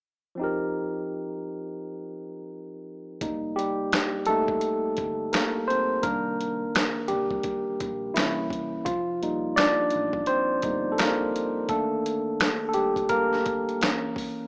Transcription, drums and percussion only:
3.21 kick, closed hi-hat
3.59 closed hi-hat
3.92 finger snap, snare, closed hi-hat
4.26 closed hi-hat
4.48 kick
4.61 closed hi-hat
4.97 kick, closed hi-hat
5.33 finger snap, snare, closed hi-hat
5.70 closed hi-hat
6.03 kick, closed hi-hat
6.41 closed hi-hat
6.75 finger snap, snare, closed hi-hat
7.08 closed hi-hat
7.31 kick
7.43 kick, closed hi-hat
7.80 kick, closed hi-hat
8.16 finger snap, snare, closed hi-hat
8.50 kick, closed hi-hat
8.86 kick, closed hi-hat
9.23 closed hi-hat
9.57 finger snap, snare, closed hi-hat
9.90 closed hi-hat
10.13 kick
10.26 closed hi-hat
10.62 kick, closed hi-hat
10.98 finger snap, snare, closed hi-hat
11.36 closed hi-hat
11.69 kick, closed hi-hat
12.06 closed hi-hat
12.40 finger snap, snare, closed hi-hat
12.73 closed hi-hat
12.96 kick, closed hi-hat
13.09 kick, closed hi-hat
13.33 snare
13.46 kick, closed hi-hat
13.69 closed hi-hat
13.81 finger snap, snare, closed hi-hat
14.16 kick, open hi-hat

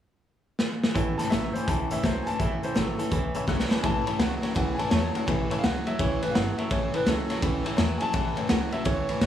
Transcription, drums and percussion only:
0.59 snare
0.84 snare
0.96 kick, closed hi-hat
1.19 snare, closed hi-hat
1.32 snare, closed hi-hat
1.56 closed hi-hat
1.68 kick, closed hi-hat
1.91 closed hi-hat
2.04 kick, snare, closed hi-hat
2.27 closed hi-hat
2.39 kick, closed hi-hat
2.63 closed hi-hat
2.76 snare, closed hi-hat
2.99 closed hi-hat
3.11 kick, closed hi-hat
3.35 closed hi-hat
3.48 kick, snare
3.60 snare
3.71 snare
3.84 kick, ride
4.07 ride
4.20 snare, ride
4.43 snare, ride
4.56 kick, ride
4.79 ride
4.91 snare, ride
5.15 ride
5.28 kick, ride
5.51 ride
5.64 snare, ride
5.87 ride
5.99 kick, ride
6.23 ride
6.35 snare, ride
6.58 ride
6.71 kick, ride
6.94 ride
7.07 snare, ride
7.30 snare, ride
7.42 kick, ride
7.66 ride
7.78 snare, ride
8.01 ride
8.14 kick, ride
8.37 ride
8.49 snare, ride
8.72 ride
8.85 kick, ride
9.09 ride
9.21 kick, snare, ride

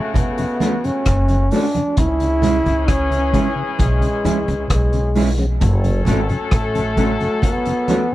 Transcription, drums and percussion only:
0.14 kick, closed hi-hat, low conga
0.38 closed hi-hat
0.60 closed hi-hat, high conga
0.84 closed hi-hat
1.05 kick, cross-stick, closed hi-hat
1.28 closed hi-hat
1.51 open hi-hat
1.75 closed hi-hat, high conga
1.97 kick, closed hi-hat, low conga
2.20 closed hi-hat
2.42 closed hi-hat, low conga
2.66 closed hi-hat
2.88 kick, cross-stick, closed hi-hat
3.12 closed hi-hat
3.34 kick, closed hi-hat
3.79 kick, closed hi-hat, low conga
4.02 closed hi-hat
4.25 closed hi-hat, high conga
4.48 closed hi-hat
4.70 kick, cross-stick, closed hi-hat
4.93 closed hi-hat
5.15 open hi-hat
5.38 closed hi-hat, high conga
5.61 kick, closed hi-hat, low conga
5.84 closed hi-hat
6.05 closed hi-hat, low conga
6.29 closed hi-hat
6.51 kick, cross-stick, closed hi-hat
6.75 closed hi-hat
6.97 kick, closed hi-hat
7.20 closed hi-hat
7.42 kick, closed hi-hat, low conga
7.65 closed hi-hat
7.88 closed hi-hat, high conga

